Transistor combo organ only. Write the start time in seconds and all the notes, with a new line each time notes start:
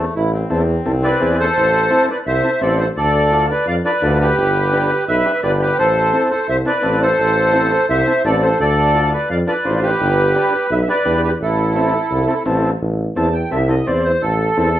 0.50 C4 E4 A4
0.85 C4 E4 A4
1.03 C4 E4 B4
1.20 C4 E4 G#4
1.90 C4 E4 A4
2.44 C4 E4 A4
2.61 C4 E4 C5
3.32 D4 F4 A4
3.85 D4 F4 A4
4.02 D4 F4 A4
4.73 D4 G4 B4
5.25 D4 G4 B4
5.43 D4 G4 B4
6.13 C4 E4 A4
6.65 C4 E4 A4
6.82 C4 E4 A4
7.53 C4 E4 A4
8.07 C4 E4 A4
8.24 C4 E4 A4
8.94 D4 F4 A4
9.47 D4 F4 A4
9.65 D4 F4 C5
10.36 D4 G4 B4
10.88 D4 G4 B4
11.05 D4 G4 B4
11.76 C4 E4 A4
12.27 C4 E4 A4
12.46 C4 E4 A4
13.16 C4 E4 A4
13.51 C4 E4 A4
13.68 C4 E4 A4
13.87 C4 E4 C5
14.57 C4 E4 A4